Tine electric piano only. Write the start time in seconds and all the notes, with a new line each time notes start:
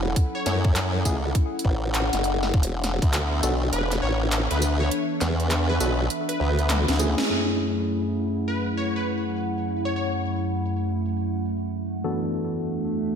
1.05 A3 C#4 E4 G#4
3.43 B3 D4 F#4 A4
5.80 B3 D4 F#4 A4
6.99 A3 C#4 E4 G#4
7.29 F#2 A3 C#4 E4 G#4
12.04 E3 B3 D4 F#4 A4